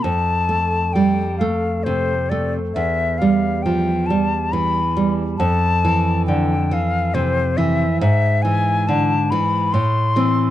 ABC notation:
X:1
M:3/4
L:1/8
Q:1/4=69
K:Flyd
V:1 name="Flute"
a2 g f c d | e f g a b z | a2 g f c e | e ^g a b c'2 |]
V:2 name="Nylon-string guitar" clef=bass
F,, A, G, A, C, A, | E,, G, F, G, E, G, | F,, E, D, E, C, E, | ^G,, E, D, E, A,, [E,C] |]